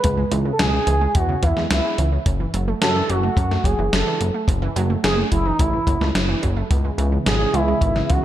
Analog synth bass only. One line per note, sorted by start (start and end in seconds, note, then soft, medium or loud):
0.04 0.24 C#2 loud
0.31 0.52 C#2 loud
0.59 0.79 C#2 medium
0.87 1.07 C#2 medium
1.15 1.35 E2 loud
1.43 1.53 E2 medium
1.57 1.67 E2 medium
1.71 1.81 C#2 loud
1.98 2.18 C#2 medium
2.26 2.46 F#1 loud
2.54 2.74 F#1 medium
2.82 3.02 F#2 loud
3.09 3.29 F#1 medium
3.37 3.57 F#2 medium
3.64 3.75 F#1 medium
3.79 3.89 F#1 medium
3.93 4.03 F#1 loud
4.20 4.31 F#1 medium
4.48 4.68 F#1 loud
4.76 4.96 F#1 loud
5.04 5.24 F#1 medium
5.32 5.52 F#1 medium
5.59 5.79 A1 loud
5.87 5.97 F#1 medium
6.01 6.11 C#2 medium
6.15 6.35 F#1 medium
6.43 6.63 F#1 medium
6.71 6.91 C#2 loud
6.98 7.18 C#2 medium
7.26 7.46 G#1 loud
7.54 7.74 C#2 medium
7.81 8.01 G#1 medium
8.10 8.20 C#2 medium